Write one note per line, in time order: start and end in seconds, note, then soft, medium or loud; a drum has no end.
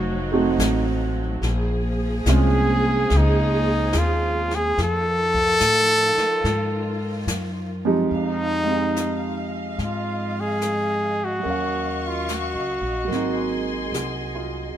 0.00 0.57 F1 medium
0.00 1.41 F3 medium
0.00 1.39 F#3 medium
0.00 1.41 A3 medium
0.00 1.41 D#4 medium
0.00 0.63 F#4 medium
0.31 0.56 A3 medium
0.31 0.57 C4 medium
0.31 0.57 D#4 medium
0.31 0.57 F#4 medium
0.58 1.40 A1 medium
0.58 snare medium
0.58 hi-hat pedal medium
1.42 2.23 A#1 medium
1.42 4.74 F3 medium
1.42 4.74 A#3 medium
1.42 4.74 G#4 medium
1.42 brush sweep soft
1.42 snare soft
2.26 3.07 C2 medium
2.26 2.78 G#3 medium
2.26 2.78 C4 medium
2.26 2.78 C#4 medium
2.26 2.79 F4 medium
2.26 snare medium
2.26 hi-hat pedal medium
2.33 3.19 G#4 medium
3.10 3.91 C#2 medium
3.10 brush sweep soft
3.10 snare soft
3.18 4.00 D#4 medium
3.93 4.74 D#2 medium
3.93 snare medium
3.93 hi-hat pedal soft
3.98 4.57 F4 medium
4.51 snare soft
4.55 4.79 G#4 medium
4.77 5.58 F2 medium
4.77 8.07 D#3 medium
4.77 8.07 F3 medium
4.77 8.08 F4 medium
4.77 brush sweep soft
4.77 snare soft
4.83 7.26 A4 loud
5.35 kick medium
5.60 6.13 A2 medium
5.60 snare medium
5.60 hi-hat pedal medium
6.17 muted upright bass stroke soft
6.17 snare soft
6.44 7.25 G#2 medium
6.44 brush sweep soft
6.44 snare soft
7.27 8.08 F#2 medium
7.27 snare medium
7.27 hi-hat pedal medium
7.85 8.89 F3 medium
7.85 8.62 G#3 soft
7.85 8.65 C4 medium
7.85 8.69 D#4 medium
7.85 8.90 G4 medium
8.09 9.73 F2 medium
8.09 14.77 D#5 medium
8.09 11.40 F5 medium
8.09 brush sweep soft
8.15 9.49 D#4 loud
8.64 11.42 G#3 soft
8.64 11.44 C4 soft
8.71 11.46 D#4 soft
8.75 11.48 G#4 soft
8.96 snare soft
8.96 hi-hat pedal soft
9.79 11.40 G#2 medium
9.79 brush sweep soft
9.79 snare soft
9.85 10.42 F4 medium
10.40 11.26 G#4 medium
10.61 snare soft
10.61 hi-hat pedal soft
11.25 12.09 F#4 medium
11.40 13.03 F#3 soft
11.40 13.06 A#3 soft
11.40 13.08 F5 medium
11.44 12.51 D#2 medium
11.44 13.11 C#4 soft
11.44 13.09 C#6 medium
11.44 brush sweep soft
11.50 13.13 F5 soft
12.08 12.35 F4 medium
12.28 snare soft
12.28 hi-hat pedal soft
12.34 13.70 F#4 medium
12.54 12.80 C#2 soft
12.81 13.08 A#1 medium
13.05 14.74 F#3 soft
13.05 14.75 A#3 soft
13.10 13.89 G#1 medium
13.10 14.75 C4 soft
13.10 14.75 G#4 medium
13.10 14.75 G#5 medium
13.10 14.74 C6 medium
13.10 brush sweep soft
13.10 snare soft
13.15 14.76 D#4 medium
13.92 14.72 C2 medium
13.92 14.60 F#4 soft
13.92 snare soft
13.92 hi-hat pedal soft
14.35 14.77 F4 soft